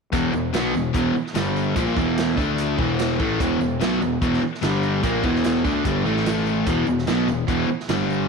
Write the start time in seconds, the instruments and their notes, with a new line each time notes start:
0.12 fingered electric bass E1, overdriven electric guitar E2 B2 E3, kick, closed hi-hat, tambourine
0.33 fingered electric bass E1, overdriven electric guitar E2 B2, tambourine
0.53 fingered electric bass B1, overdriven electric guitar B2 F#3 B3, snare, closed hi-hat, tambourine
0.74 fingered electric bass E1, overdriven electric guitar E2 B2, tambourine
0.93 fingered electric bass E1, overdriven electric guitar E2 B2 E3, kick, closed hi-hat
1.15 muted overdriven electric guitar stroke, muted fingered electric bass stroke, tambourine
1.27 snare
1.34 fingered electric bass G1, overdriven electric guitar G2 D3 G3, snare, closed hi-hat, tambourine
1.56 tambourine
1.75 fingered electric bass A#1, overdriven electric guitar A#2 F3 A#3, kick, closed hi-hat, tambourine
1.95 fingered electric bass E1, overdriven electric guitar E2 B2 E3, kick, tambourine
2.17 snare, closed hi-hat, tambourine
2.37 fingered electric bass D2, overdriven electric guitar D3 A3 D4, kick, tambourine
2.58 closed hi-hat
2.78 fingered electric bass E1, overdriven electric guitar E2 B2 E3, kick, tambourine
2.99 snare, closed hi-hat, tambourine
3.19 fingered electric bass A1, overdriven electric guitar A2 E3 A3, kick, tambourine
3.39 fingered electric bass E1, overdriven electric guitar E2 B2 E3, kick, closed hi-hat, tambourine
3.60 fingered electric bass E1, overdriven electric guitar E2 B2, tambourine
3.80 fingered electric bass B1, overdriven electric guitar B2 F#3 B3, snare, closed hi-hat, tambourine
4.00 fingered electric bass E1, overdriven electric guitar E2 B2, tambourine
4.21 fingered electric bass E1, overdriven electric guitar E2 B2 E3, kick, closed hi-hat
4.33 snare
4.42 muted overdriven electric guitar stroke, muted fingered electric bass stroke, tambourine
4.54 snare
4.61 fingered electric bass G1, overdriven electric guitar G2 D3 G3, snare, closed hi-hat, tambourine
4.83 tambourine
5.03 fingered electric bass A#1, overdriven electric guitar A#2 F3 A#3, kick, closed hi-hat, tambourine
5.23 fingered electric bass E1, overdriven electric guitar E2 B2 E3, kick, tambourine
5.35 snare
5.44 snare, closed hi-hat, tambourine
5.64 fingered electric bass D2, overdriven electric guitar D3 A3 D4, kick, tambourine
5.85 fingered electric bass G1, overdriven electric guitar G2 D3 G3, kick, closed hi-hat, tambourine
6.04 fingered electric bass A1, overdriven electric guitar A2 E3 A3, tambourine
6.17 snare
6.26 snare, closed hi-hat, tambourine
6.46 tambourine
6.66 fingered electric bass E1, overdriven electric guitar E2 B2 E3, kick, closed hi-hat, tambourine
6.87 fingered electric bass E1, overdriven electric guitar E2 B2, tambourine
6.98 snare
7.07 fingered electric bass B1, overdriven electric guitar B2 F#3 B3, snare, closed hi-hat, tambourine
7.28 fingered electric bass E1, overdriven electric guitar E2 B2, tambourine
7.48 fingered electric bass E1, overdriven electric guitar E2 B2 E3, kick, closed hi-hat
7.68 muted overdriven electric guitar stroke, muted fingered electric bass stroke, tambourine
7.80 snare
7.89 fingered electric bass G1, overdriven electric guitar G2 D3 G3, snare, closed hi-hat, tambourine
8.10 tambourine